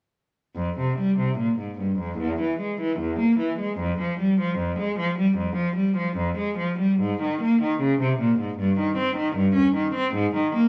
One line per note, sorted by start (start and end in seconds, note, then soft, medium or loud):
0.55 0.77 F2 medium
0.79 0.99 C3 soft
0.99 1.18 G3 medium
1.19 1.39 C3 medium
1.38 1.58 A#2 medium
1.59 1.78 G#2 soft
1.79 1.99 G2 soft
1.99 2.19 F2 medium
2.19 2.39 E2 medium
2.41 2.60 E3 soft
2.60 2.79 G#3 medium
2.81 3.00 E3 medium
3.00 3.19 E2 medium
3.19 3.39 A#3 medium
3.39 3.59 E3 soft
3.59 3.79 G#3 medium
3.78 3.98 F2 medium
4.00 4.19 F3 medium
4.20 4.39 G3 medium
4.40 4.59 F3 medium
4.58 4.78 F2 medium
4.79 4.98 G#3 medium
4.99 5.18 F3 medium
5.19 5.37 G3 medium
5.37 5.57 F2 medium
5.56 5.76 F3 medium
5.76 5.96 G3 medium
5.97 6.16 F3 medium
6.17 6.37 F2 medium
6.38 6.57 G#3 medium
6.58 6.78 F3 medium
6.79 6.99 G3 medium
7.00 7.20 G#2 medium
7.22 7.41 D#3 medium
7.42 7.61 A#3 medium
7.62 7.81 D#3 medium
7.81 8.00 C#3 medium
8.01 8.20 C3 medium
8.20 8.39 A#2 medium
8.40 8.58 G#2 medium
8.59 8.77 G2 medium
8.79 8.97 D#3 medium
8.98 9.16 C4 medium
9.16 9.35 D#3 medium
9.36 9.54 G2 medium
9.55 9.74 C#4 medium
9.75 9.94 D#3 medium
9.95 10.13 C4 medium
10.14 10.33 G#2 medium
10.36 10.53 D#3 medium
10.55 10.68 A#3 medium